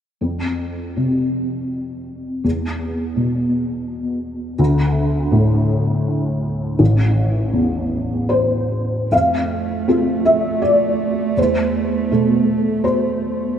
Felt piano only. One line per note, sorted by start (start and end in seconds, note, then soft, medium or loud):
0.21 2.40 F2 soft
0.96 2.44 C3 soft
2.44 4.55 E2 soft
3.16 4.59 B2 soft
4.59 6.76 D2 soft
5.32 6.79 A2 soft
6.79 9.07 A1 soft
7.53 9.11 E2 soft
8.29 9.07 C5 medium
9.11 9.86 F2 soft
9.11 10.22 F5 medium
9.88 11.33 C4 soft
9.88 11.33 F4 soft
9.88 11.33 A4 soft
10.25 10.60 E5 soft
10.62 11.33 D5 medium
11.37 12.09 E2 soft
11.37 12.81 C5 soft
12.11 13.57 B2 soft
12.11 13.57 A3 soft
12.11 13.57 A4 soft
12.84 13.57 C5 medium